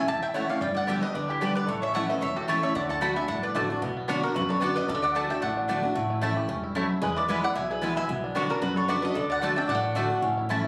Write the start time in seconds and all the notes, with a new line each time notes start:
Already playing: C#4 E4
0.07 E1 E2 G4 E5 A5
0.22 E4 E5 G5
0.34 E3 A3 C#4 E4 C#5 F#5 A5
0.49 C#4 E4 G4 C#5 F5
0.61 G1 G2 G3 D5 G5
0.75 B3 D5 F#5
0.87 D3 G3 B3 D4 G4 B4 D5 E5 G5
1.01 G3 B3 G4 B4 D#5
1.14 D2 D3 D4 B4 D5
1.28 E4 G4
1.41 D3 G3 B3 D4 G4 B4 D5 G5
1.55 G3 B4 D5
1.67 A1 A2 A3 A4 C#5
1.82 C#4 C#5 E5
1.94 E3 A3 C#4 E4 C#5 F#5 A5
2.09 A3 C#4 E4 B4 D#5
2.21 E1 E2 E4 C#5 E5
2.36 F#4 G4 A4
2.48 E3 A3 C#4 E4 A4 C#5 A5
2.63 A3 C#4 E4 C#5 E5
2.75 D2 D3 A3 D5 F#5
2.89 D4 F#5 A5
3.01 D3 A3 D4 F#4 D5 F#5 A5 B5
3.16 D4 F#4 E5 G#5
3.28 G1 A2 D4 F#5 A5
3.43 D4 B4 D5
3.55 A1 D3 A3 D4 F#4 D5 A5
3.70 D4 F#4
3.82 B1 B2 B3
3.97 B3
4.08 D3 B3 D4 F#4 C#5 D5 F#5
4.23 B3 D4 F#4 A#4
4.34 F#1 F#2 A3 F#4 B4
4.41 B3
4.49 D4 A4 C#5
4.60 D3 B3 D4 F#4 B4 D5 F#5
4.76 D4 F#4 B4 D#5
4.88 D2 D3 G3 A4 D5
4.95 A3
5.02 D4 D5 F#5
5.15 D3 A3 D4 F#4 D5 F#5 A5
5.30 D4 F#4 E5 G5
5.42 A1 A2 A3 D5 F#5
5.57 D4
5.68 D3 A3 D4 F#4 D5 A5
5.83 D4 F#4
5.95 A1 A2 A3
6.10 E4
6.21 E3 A3 C#4 E4 C#5 A5
6.37 G4
6.48 E1 G2 C#4
6.64 E4
6.75 F#2 A3 E4 C#5 A5
6.91 E4
7.02 E1 E2 G#3 G#4 B4
7.16 E4 B4 D5
7.28 E3 G#3 B3 E4 B4 E5 G#5
7.43 B3 E4 D5 F#5
7.55 B1 B2 E4 E5 G#5
7.70 E4 G#4 B4
7.81 E3 G#3 B3 E4 B4 E5 G#5
7.97 B3 E4 E5 G#5
8.09 B1 B2 B3
8.24 D4
8.35 D3 B3 D4 F#4 C#5 D5 F#5
8.49 D4 F#4 A#4
8.62 F#1 F#2 B3 F#4 B4
8.76 D4 A4 C#5
8.88 D3 B3 D4 F#4 B4 D5 F#5
9.02 D4 F#4 B4 D#5
9.14 D2 D3 D4 A4 D5
9.30 D4 D5 F#5
9.41 D3 A3 D4 F#4 D5 F#5 A5
9.56 D4 F#4 E5 G5
9.68 A1 A2 G3 D5 F#5
9.75 A3
9.84 D4
9.95 D3 A3 D4 F#4 D5 A5
10.10 D4 F#4
10.22 A1 A2 C#4
10.38 E4
10.49 E3 A3 C#4 E4 C#5 A5
10.64 E4